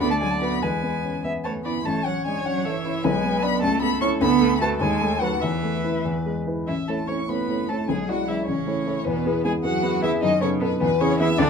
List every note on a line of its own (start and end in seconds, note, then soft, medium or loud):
0.01 0.60 D2 medium
0.01 0.13 B3 medium
0.01 0.61 D5 medium
0.01 0.10 B5 medium
0.11 0.23 A3 medium
0.11 0.15 A5 medium
0.21 0.55 F#3 soft
0.21 0.31 G#3 medium
0.21 0.32 G#5 medium
0.31 0.41 A3 medium
0.31 0.41 A5 medium
0.41 0.64 B3 medium
0.41 0.60 F#4 soft
0.41 0.61 B4 soft
0.41 0.64 B5 medium
0.62 1.82 E2 medium
0.62 1.24 G#3 medium
0.62 1.19 B4 medium
0.62 1.24 G#5 medium
0.83 1.16 B3 soft
1.04 1.24 C#4 soft
1.24 1.57 B3 soft
1.24 1.32 E5 medium
1.44 1.64 A3 soft
1.44 1.78 B4 soft
1.44 1.53 C#5 medium
1.44 1.52 A5 medium
1.65 1.85 B3 medium
1.65 1.86 E4 soft
1.65 1.73 D5 soft
1.65 1.87 B5 medium
1.85 3.01 A1 medium
1.85 2.05 A3 medium
1.85 3.01 C#5 medium
1.85 2.07 A5 medium
2.05 2.14 F#3 medium
2.05 2.38 C#4 soft
2.05 2.26 F#5 medium
2.26 2.45 G#3 medium
2.26 2.46 D4 soft
2.26 2.47 G#5 medium
2.45 2.67 F#3 medium
2.45 2.77 C#4 soft
2.45 2.67 F#5 medium
2.65 3.06 E3 medium
2.65 2.97 A4 soft
2.65 3.06 E5 medium
2.85 3.05 E4 soft
3.04 3.61 B1 medium
3.04 3.44 G#3 medium
3.04 3.61 B4 medium
3.04 3.44 G#5 medium
3.24 3.55 B3 soft
3.43 3.63 B3 medium
3.43 3.60 D4 soft
3.43 3.61 D5 medium
3.43 3.62 B5 medium
3.62 4.19 C#2 medium
3.62 3.80 A3 medium
3.62 5.38 A4 medium
3.62 3.81 A5 medium
3.81 4.13 A3 medium
3.81 3.89 B3 medium
3.81 4.01 B5 medium
4.01 4.09 C#4 medium
4.01 4.19 E4 medium
4.01 4.19 C#5 medium
4.01 4.10 C#6 medium
4.20 4.79 D2 medium
4.20 4.60 B3 loud
4.20 4.60 B5 loud
4.41 4.73 A3 medium
4.61 4.80 A3 medium
4.61 4.79 F#4 medium
4.61 4.79 B4 medium
4.61 4.69 A5 loud
4.80 5.40 D#2 medium
4.80 5.20 G#3 medium
4.80 5.22 G#5 medium
5.01 5.34 A3 medium
5.20 5.29 F#3 medium
5.20 5.40 F#4 soft
5.20 5.40 B4 medium
5.20 5.43 F#5 medium
5.42 6.03 E2 medium
5.42 6.03 E3 medium
5.42 6.34 B4 medium
5.42 6.05 E5 medium
5.63 5.96 A3 soft
5.84 6.03 E4 soft
5.84 6.03 B4 soft
6.05 6.66 E2 medium
6.26 6.60 G#3 soft
6.47 6.66 E4 soft
6.47 6.66 B4 soft
6.67 6.88 A1 soft
6.67 6.76 E3 soft
6.67 6.76 E4 medium
6.67 6.90 E5 medium
6.88 7.06 A3 soft
6.88 7.08 A3 soft
6.88 7.07 E4 soft
6.88 6.96 A4 soft
6.88 7.07 C#5 soft
6.88 7.09 A5 soft
7.07 7.27 A3 soft
7.07 7.28 C#4 soft
7.07 7.27 E4 soft
7.07 7.16 C#5 soft
7.07 7.27 C#5 soft
7.07 7.31 C#6 medium
7.29 7.47 A3 soft
7.29 7.71 B3 medium
7.29 7.47 E4 soft
7.29 7.68 B4 soft
7.29 7.48 C#5 soft
7.29 7.70 B5 medium
7.49 7.67 A3 soft
7.49 7.68 E4 soft
7.49 7.68 C#5 soft
7.69 7.90 A3 medium
7.69 7.87 A3 soft
7.69 7.87 E4 soft
7.69 7.77 A4 soft
7.69 7.88 C#5 soft
7.69 7.88 A5 medium
7.89 8.08 B1 soft
7.89 8.09 G#3 medium
7.89 8.10 G#4 medium
7.89 7.97 G#5 medium
8.08 8.27 F#3 soft
8.08 8.26 G#3 soft
8.08 8.27 E4 soft
8.08 8.28 F#4 medium
8.08 8.27 D5 soft
8.08 8.30 F#5 medium
8.28 8.35 E3 soft
8.28 8.46 G#3 soft
8.28 8.47 E4 soft
8.28 8.46 E4 soft
8.28 8.46 D5 soft
8.28 8.46 E5 medium
8.46 8.66 A1 soft
8.46 9.05 C#3 medium
8.46 9.08 C#4 medium
8.46 9.07 C#5 medium
8.66 8.84 A3 soft
8.66 8.84 E4 soft
8.66 8.85 C#5 soft
8.87 9.04 A3 soft
8.87 9.04 E4 soft
8.87 9.05 C#5 soft
9.05 9.25 E2 medium
9.05 9.44 B2 medium
9.05 9.44 B3 medium
9.05 9.44 B4 medium
9.25 9.43 B3 soft
9.25 9.43 E4 soft
9.25 9.44 G#4 soft
9.45 9.53 G#3 medium
9.45 9.62 B3 soft
9.45 9.62 E4 soft
9.45 9.53 G#4 medium
9.45 9.63 G#4 soft
9.45 9.53 G#5 medium
9.64 10.02 F#3 medium
9.64 9.81 B3 soft
9.64 9.82 E4 soft
9.64 10.04 F#4 medium
9.64 9.82 G#4 soft
9.64 10.02 F#5 medium
9.83 10.01 B3 soft
9.83 10.01 E4 soft
9.83 10.01 G#4 soft
10.02 10.11 E3 medium
10.02 10.20 B3 medium
10.02 10.21 E4 medium
10.02 10.20 E4 soft
10.02 10.21 G#4 medium
10.02 10.11 E5 medium
10.21 10.41 F#2 medium
10.21 10.41 D#3 medium
10.21 10.30 D#4 medium
10.21 10.41 D#5 medium
10.40 10.63 C#3 medium
10.40 10.59 B3 medium
10.40 10.48 C#4 medium
10.40 10.59 D#4 medium
10.40 10.60 A4 medium
10.40 10.49 C#5 medium
10.60 10.81 B2 medium
10.60 10.68 B3 medium
10.60 10.79 B3 soft
10.60 10.79 D#4 medium
10.60 10.79 A4 medium
10.60 10.80 B4 medium
10.80 11.00 E2 medium
10.80 10.89 B2 medium
10.80 10.88 B3 medium
10.80 11.02 B4 medium
11.00 11.19 C#3 medium
11.00 11.18 B3 soft
11.00 11.19 C#4 medium
11.00 11.18 E4 medium
11.00 11.18 G#4 medium
11.00 11.20 C#5 medium
11.19 11.27 E3 medium
11.19 11.37 B3 medium
11.19 11.27 E4 medium
11.19 11.37 E4 medium
11.19 11.37 G#4 medium
11.19 11.40 E5 loud
11.38 11.50 D2 medium
11.38 11.47 D3 medium
11.38 11.50 D4 loud
11.38 11.50 D5 loud